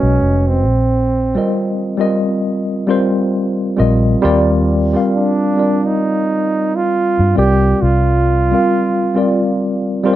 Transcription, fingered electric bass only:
0, 0, Header, 1, 2, 480
1, 0, Start_track
1, 0, Tempo, 895522
1, 343, Time_signature, 4, 2, 24, 8
1, 5445, End_track
2, 0, Start_track
2, 0, Title_t, "Fingered electric bass"
2, 0, Program_c, 0, 33
2, 16, Note_on_c, 0, 35, 80
2, 89, Note_off_c, 0, 35, 0
2, 115, Note_on_c, 0, 29, 68
2, 354, Note_off_c, 0, 29, 0
2, 354, Note_on_c, 0, 34, 81
2, 729, Note_off_c, 0, 34, 0
2, 2036, Note_on_c, 0, 34, 75
2, 2220, Note_off_c, 0, 34, 0
2, 2275, Note_on_c, 0, 39, 83
2, 2650, Note_off_c, 0, 39, 0
2, 3856, Note_on_c, 0, 43, 74
2, 3929, Note_off_c, 0, 43, 0
2, 3955, Note_on_c, 0, 36, 79
2, 4140, Note_off_c, 0, 36, 0
2, 4194, Note_on_c, 0, 36, 86
2, 4569, Note_off_c, 0, 36, 0
2, 5445, End_track
0, 0, End_of_file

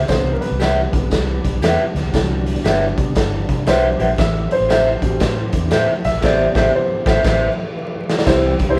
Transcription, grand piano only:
0, 0, Header, 1, 2, 480
1, 0, Start_track
1, 0, Key_signature, 0, "major"
1, 0, Tempo, 511073
1, 87, Time_signature, 4, 2, 24, 8
1, 8258, End_track
2, 0, Start_track
2, 0, Title_t, "Grand piano"
2, 0, Program_c, 0, 0
2, 78, Note_on_c, 0, 72, 90
2, 82, Note_on_c, 0, 50, 54
2, 88, Note_on_c, 0, 52, 49
2, 94, Note_on_c, 0, 59, 66
2, 308, Note_on_c, 0, 70, 64
2, 312, Note_off_c, 0, 72, 0
2, 385, Note_on_c, 0, 71, 83
2, 394, Note_off_c, 0, 70, 0
2, 443, Note_off_c, 0, 50, 0
2, 446, Note_off_c, 0, 52, 0
2, 449, Note_off_c, 0, 59, 0
2, 873, Note_on_c, 0, 52, 42
2, 874, Note_on_c, 0, 50, 43
2, 881, Note_on_c, 0, 59, 51
2, 1029, Note_off_c, 0, 52, 0
2, 1030, Note_off_c, 0, 50, 0
2, 1034, Note_off_c, 0, 59, 0
2, 1485, Note_off_c, 0, 71, 0
2, 2001, Note_on_c, 0, 50, 58
2, 2006, Note_on_c, 0, 52, 50
2, 2011, Note_on_c, 0, 47, 58
2, 2775, Note_off_c, 0, 50, 0
2, 2780, Note_off_c, 0, 52, 0
2, 2789, Note_on_c, 0, 50, 42
2, 2793, Note_on_c, 0, 59, 50
2, 2794, Note_on_c, 0, 52, 42
2, 2947, Note_off_c, 0, 50, 0
2, 2950, Note_off_c, 0, 52, 0
2, 2950, Note_off_c, 0, 59, 0
2, 3458, Note_on_c, 0, 72, 94
2, 3892, Note_off_c, 0, 47, 0
2, 3938, Note_on_c, 0, 76, 105
2, 3948, Note_off_c, 0, 72, 0
2, 4247, Note_on_c, 0, 72, 104
2, 4250, Note_off_c, 0, 76, 0
2, 4716, Note_on_c, 0, 48, 55
2, 4727, Note_on_c, 0, 55, 50
2, 4729, Note_on_c, 0, 47, 63
2, 4997, Note_off_c, 0, 48, 0
2, 5002, Note_off_c, 0, 55, 0
2, 5004, Note_off_c, 0, 47, 0
2, 5337, Note_off_c, 0, 72, 0
2, 5681, Note_on_c, 0, 76, 118
2, 5849, Note_on_c, 0, 48, 57
2, 5856, Note_off_c, 0, 76, 0
2, 5856, Note_on_c, 0, 55, 52
2, 5859, Note_on_c, 0, 59, 67
2, 5859, Note_on_c, 0, 74, 101
2, 6338, Note_on_c, 0, 72, 82
2, 6348, Note_off_c, 0, 74, 0
2, 6598, Note_off_c, 0, 48, 0
2, 6602, Note_off_c, 0, 55, 0
2, 6604, Note_off_c, 0, 59, 0
2, 6780, Note_off_c, 0, 72, 0
2, 7756, Note_on_c, 0, 55, 94
2, 7757, Note_on_c, 0, 60, 77
2, 7764, Note_on_c, 0, 64, 81
2, 7768, Note_on_c, 0, 72, 86
2, 7998, Note_off_c, 0, 55, 0
2, 7998, Note_off_c, 0, 60, 0
2, 8002, Note_off_c, 0, 64, 0
2, 8004, Note_off_c, 0, 72, 0
2, 8155, Note_on_c, 0, 60, 70
2, 8157, Note_on_c, 0, 55, 84
2, 8163, Note_on_c, 0, 64, 81
2, 8172, Note_on_c, 0, 72, 94
2, 8258, Note_off_c, 0, 55, 0
2, 8258, Note_off_c, 0, 60, 0
2, 8258, Note_off_c, 0, 64, 0
2, 8258, Note_off_c, 0, 72, 0
2, 8258, End_track
0, 0, End_of_file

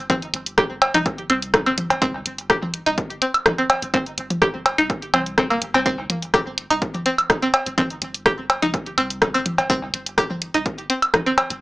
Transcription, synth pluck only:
0, 0, Header, 1, 2, 480
1, 0, Start_track
1, 0, Key_signature, -3, "minor"
1, 0, Tempo, 480000
1, 97, Time_signature, 4, 2, 24, 8
1, 11612, End_track
2, 0, Start_track
2, 0, Title_t, "Synth pluck"
2, 0, Program_c, 0, 84
2, 97, Note_on_c, 0, 60, 100
2, 133, Note_off_c, 0, 60, 0
2, 578, Note_on_c, 0, 67, 85
2, 638, Note_off_c, 0, 67, 0
2, 944, Note_on_c, 0, 63, 102
2, 976, Note_off_c, 0, 63, 0
2, 1298, Note_on_c, 0, 60, 80
2, 1334, Note_off_c, 0, 60, 0
2, 1664, Note_on_c, 0, 60, 78
2, 1718, Note_off_c, 0, 60, 0
2, 2017, Note_on_c, 0, 60, 102
2, 2053, Note_off_c, 0, 60, 0
2, 2498, Note_on_c, 0, 67, 86
2, 2558, Note_off_c, 0, 67, 0
2, 2863, Note_on_c, 0, 63, 102
2, 2896, Note_off_c, 0, 63, 0
2, 3217, Note_on_c, 0, 60, 75
2, 3253, Note_off_c, 0, 60, 0
2, 3583, Note_on_c, 0, 60, 78
2, 3638, Note_off_c, 0, 60, 0
2, 3937, Note_on_c, 0, 60, 104
2, 3973, Note_off_c, 0, 60, 0
2, 4416, Note_on_c, 0, 67, 87
2, 4477, Note_off_c, 0, 67, 0
2, 4783, Note_on_c, 0, 63, 102
2, 4816, Note_off_c, 0, 63, 0
2, 5137, Note_on_c, 0, 60, 76
2, 5197, Note_off_c, 0, 60, 0
2, 5378, Note_on_c, 0, 60, 83
2, 5438, Note_off_c, 0, 60, 0
2, 5504, Note_on_c, 0, 58, 79
2, 5585, Note_off_c, 0, 58, 0
2, 5744, Note_on_c, 0, 60, 81
2, 5798, Note_off_c, 0, 60, 0
2, 5858, Note_on_c, 0, 60, 101
2, 5894, Note_off_c, 0, 60, 0
2, 6338, Note_on_c, 0, 67, 85
2, 6398, Note_off_c, 0, 67, 0
2, 6704, Note_on_c, 0, 63, 102
2, 6736, Note_off_c, 0, 63, 0
2, 7058, Note_on_c, 0, 60, 80
2, 7094, Note_off_c, 0, 60, 0
2, 7424, Note_on_c, 0, 60, 80
2, 7478, Note_off_c, 0, 60, 0
2, 7777, Note_on_c, 0, 60, 103
2, 7813, Note_off_c, 0, 60, 0
2, 8257, Note_on_c, 0, 67, 86
2, 8317, Note_off_c, 0, 67, 0
2, 8624, Note_on_c, 0, 63, 102
2, 8656, Note_off_c, 0, 63, 0
2, 8977, Note_on_c, 0, 60, 78
2, 9013, Note_off_c, 0, 60, 0
2, 9345, Note_on_c, 0, 60, 77
2, 9398, Note_off_c, 0, 60, 0
2, 9697, Note_on_c, 0, 60, 102
2, 9733, Note_off_c, 0, 60, 0
2, 10178, Note_on_c, 0, 67, 85
2, 10238, Note_off_c, 0, 67, 0
2, 10545, Note_on_c, 0, 63, 98
2, 10577, Note_off_c, 0, 63, 0
2, 10897, Note_on_c, 0, 60, 77
2, 10933, Note_off_c, 0, 60, 0
2, 11264, Note_on_c, 0, 60, 80
2, 11318, Note_off_c, 0, 60, 0
2, 11612, End_track
0, 0, End_of_file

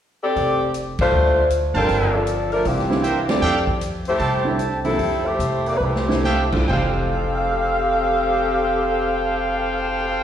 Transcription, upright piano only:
0, 0, Header, 1, 2, 480
1, 0, Start_track
1, 0, Key_signature, -1, "major"
1, 0, Tempo, 382653
1, 452, Time_signature, 4, 2, 24, 8
1, 4773, Tempo, 397351
1, 6693, Tempo, 431344
1, 8133, Tempo, 451128
1, 11904, End_track
2, 0, Start_track
2, 0, Title_t, "Upright piano"
2, 0, Program_c, 0, 0
2, 2199, Note_on_c, 0, 50, 48
2, 2201, Note_on_c, 0, 55, 46
2, 2203, Note_on_c, 0, 60, 48
2, 2208, Note_on_c, 0, 65, 56
2, 2816, Note_off_c, 0, 50, 0
2, 2817, Note_off_c, 0, 55, 0
2, 2818, Note_off_c, 0, 60, 0
2, 2821, Note_off_c, 0, 65, 0
2, 3636, Note_on_c, 0, 55, 56
2, 3637, Note_on_c, 0, 50, 61
2, 3641, Note_on_c, 0, 60, 56
2, 3642, Note_on_c, 0, 64, 69
2, 3792, Note_off_c, 0, 50, 0
2, 3792, Note_off_c, 0, 55, 0
2, 3795, Note_off_c, 0, 60, 0
2, 3795, Note_off_c, 0, 64, 0
2, 4116, Note_on_c, 0, 50, 55
2, 4120, Note_on_c, 0, 55, 50
2, 4121, Note_on_c, 0, 60, 52
2, 4126, Note_on_c, 0, 64, 57
2, 4272, Note_off_c, 0, 50, 0
2, 4274, Note_off_c, 0, 55, 0
2, 4275, Note_off_c, 0, 60, 0
2, 4277, Note_off_c, 0, 64, 0
2, 5548, Note_on_c, 0, 50, 67
2, 5548, Note_on_c, 0, 55, 58
2, 5551, Note_on_c, 0, 60, 57
2, 5554, Note_on_c, 0, 64, 67
2, 5700, Note_off_c, 0, 50, 0
2, 5701, Note_off_c, 0, 55, 0
2, 5702, Note_off_c, 0, 60, 0
2, 5704, Note_off_c, 0, 64, 0
2, 6033, Note_on_c, 0, 48, 57
2, 6036, Note_on_c, 0, 53, 48
2, 6037, Note_on_c, 0, 58, 48
2, 6039, Note_on_c, 0, 62, 56
2, 6186, Note_off_c, 0, 48, 0
2, 6188, Note_off_c, 0, 53, 0
2, 6188, Note_off_c, 0, 58, 0
2, 6189, Note_off_c, 0, 62, 0
2, 7463, Note_on_c, 0, 50, 68
2, 7463, Note_on_c, 0, 60, 59
2, 7464, Note_on_c, 0, 55, 58
2, 7467, Note_on_c, 0, 64, 73
2, 7620, Note_off_c, 0, 50, 0
2, 7620, Note_off_c, 0, 60, 0
2, 7621, Note_off_c, 0, 55, 0
2, 7622, Note_off_c, 0, 64, 0
2, 7957, Note_on_c, 0, 52, 51
2, 7957, Note_on_c, 0, 57, 50
2, 7958, Note_on_c, 0, 43, 58
2, 7959, Note_on_c, 0, 62, 56
2, 7962, Note_on_c, 0, 65, 61
2, 8116, Note_off_c, 0, 57, 0
2, 8117, Note_off_c, 0, 43, 0
2, 8117, Note_off_c, 0, 52, 0
2, 8118, Note_off_c, 0, 62, 0
2, 8119, Note_off_c, 0, 65, 0
2, 8122, Note_on_c, 0, 41, 48
2, 8135, Note_on_c, 0, 48, 49
2, 8139, Note_on_c, 0, 52, 45
2, 8147, Note_on_c, 0, 57, 42
2, 8154, Note_on_c, 0, 67, 49
2, 11904, Note_off_c, 0, 41, 0
2, 11904, Note_off_c, 0, 48, 0
2, 11904, Note_off_c, 0, 52, 0
2, 11904, Note_off_c, 0, 57, 0
2, 11904, Note_off_c, 0, 67, 0
2, 11904, End_track
0, 0, End_of_file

